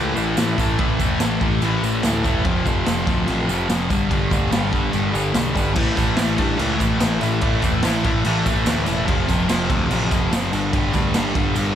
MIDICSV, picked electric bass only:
0, 0, Header, 1, 2, 480
1, 0, Start_track
1, 0, Tempo, 414365
1, 917, Time_signature, 4, 2, 24, 8
1, 13611, End_track
2, 0, Start_track
2, 0, Title_t, "Picked electric bass"
2, 0, Program_c, 0, 34
2, 0, Note_on_c, 0, 37, 108
2, 171, Note_off_c, 0, 37, 0
2, 193, Note_on_c, 0, 33, 108
2, 407, Note_off_c, 0, 33, 0
2, 431, Note_on_c, 0, 33, 98
2, 647, Note_off_c, 0, 33, 0
2, 671, Note_on_c, 0, 33, 100
2, 887, Note_off_c, 0, 33, 0
2, 915, Note_on_c, 0, 33, 89
2, 1129, Note_off_c, 0, 33, 0
2, 1151, Note_on_c, 0, 28, 90
2, 1367, Note_off_c, 0, 28, 0
2, 1393, Note_on_c, 0, 33, 95
2, 1609, Note_off_c, 0, 33, 0
2, 1633, Note_on_c, 0, 33, 86
2, 1849, Note_off_c, 0, 33, 0
2, 1871, Note_on_c, 0, 33, 94
2, 2087, Note_off_c, 0, 33, 0
2, 2113, Note_on_c, 0, 33, 100
2, 2329, Note_off_c, 0, 33, 0
2, 2359, Note_on_c, 0, 38, 106
2, 2572, Note_off_c, 0, 38, 0
2, 2602, Note_on_c, 0, 28, 83
2, 2814, Note_off_c, 0, 28, 0
2, 2841, Note_on_c, 0, 29, 84
2, 3053, Note_off_c, 0, 29, 0
2, 3083, Note_on_c, 0, 29, 96
2, 3294, Note_off_c, 0, 29, 0
2, 3316, Note_on_c, 0, 29, 92
2, 3530, Note_off_c, 0, 29, 0
2, 3558, Note_on_c, 0, 38, 96
2, 3772, Note_off_c, 0, 38, 0
2, 3800, Note_on_c, 0, 33, 101
2, 4012, Note_off_c, 0, 33, 0
2, 4039, Note_on_c, 0, 29, 98
2, 4252, Note_off_c, 0, 29, 0
2, 4276, Note_on_c, 0, 29, 99
2, 4524, Note_off_c, 0, 29, 0
2, 4524, Note_on_c, 0, 31, 96
2, 4735, Note_off_c, 0, 31, 0
2, 4760, Note_on_c, 0, 31, 89
2, 4972, Note_off_c, 0, 31, 0
2, 4996, Note_on_c, 0, 38, 100
2, 5210, Note_off_c, 0, 38, 0
2, 5227, Note_on_c, 0, 31, 88
2, 5445, Note_off_c, 0, 31, 0
2, 5480, Note_on_c, 0, 31, 104
2, 5692, Note_off_c, 0, 31, 0
2, 5722, Note_on_c, 0, 31, 109
2, 5933, Note_off_c, 0, 31, 0
2, 5956, Note_on_c, 0, 31, 98
2, 6170, Note_off_c, 0, 31, 0
2, 6197, Note_on_c, 0, 35, 98
2, 6410, Note_off_c, 0, 35, 0
2, 6438, Note_on_c, 0, 31, 100
2, 6650, Note_off_c, 0, 31, 0
2, 6679, Note_on_c, 0, 33, 86
2, 6890, Note_off_c, 0, 33, 0
2, 6921, Note_on_c, 0, 33, 101
2, 7132, Note_off_c, 0, 33, 0
2, 7169, Note_on_c, 0, 33, 96
2, 7376, Note_off_c, 0, 33, 0
2, 7401, Note_on_c, 0, 43, 102
2, 7611, Note_off_c, 0, 43, 0
2, 7642, Note_on_c, 0, 37, 101
2, 7852, Note_off_c, 0, 37, 0
2, 7881, Note_on_c, 0, 33, 96
2, 8091, Note_off_c, 0, 33, 0
2, 8128, Note_on_c, 0, 33, 112
2, 8335, Note_off_c, 0, 33, 0
2, 8366, Note_on_c, 0, 33, 92
2, 8574, Note_off_c, 0, 33, 0
2, 8599, Note_on_c, 0, 33, 91
2, 8810, Note_off_c, 0, 33, 0
2, 8838, Note_on_c, 0, 28, 89
2, 9049, Note_off_c, 0, 28, 0
2, 9079, Note_on_c, 0, 33, 85
2, 9290, Note_off_c, 0, 33, 0
2, 9319, Note_on_c, 0, 33, 100
2, 9530, Note_off_c, 0, 33, 0
2, 9556, Note_on_c, 0, 33, 105
2, 9768, Note_off_c, 0, 33, 0
2, 9799, Note_on_c, 0, 33, 98
2, 10010, Note_off_c, 0, 33, 0
2, 10033, Note_on_c, 0, 38, 102
2, 10247, Note_off_c, 0, 38, 0
2, 10279, Note_on_c, 0, 28, 103
2, 10490, Note_off_c, 0, 28, 0
2, 10521, Note_on_c, 0, 29, 99
2, 10731, Note_off_c, 0, 29, 0
2, 10760, Note_on_c, 0, 29, 103
2, 10971, Note_off_c, 0, 29, 0
2, 10995, Note_on_c, 0, 29, 95
2, 11208, Note_off_c, 0, 29, 0
2, 11236, Note_on_c, 0, 38, 106
2, 11449, Note_off_c, 0, 38, 0
2, 11478, Note_on_c, 0, 33, 112
2, 11690, Note_off_c, 0, 33, 0
2, 11717, Note_on_c, 0, 29, 92
2, 11929, Note_off_c, 0, 29, 0
2, 11949, Note_on_c, 0, 30, 106
2, 12165, Note_off_c, 0, 30, 0
2, 12195, Note_on_c, 0, 31, 92
2, 12409, Note_off_c, 0, 31, 0
2, 12431, Note_on_c, 0, 31, 88
2, 12647, Note_off_c, 0, 31, 0
2, 12678, Note_on_c, 0, 38, 87
2, 12891, Note_off_c, 0, 38, 0
2, 12904, Note_on_c, 0, 31, 88
2, 13123, Note_off_c, 0, 31, 0
2, 13147, Note_on_c, 0, 31, 98
2, 13365, Note_off_c, 0, 31, 0
2, 13386, Note_on_c, 0, 31, 107
2, 13605, Note_off_c, 0, 31, 0
2, 13611, End_track
0, 0, End_of_file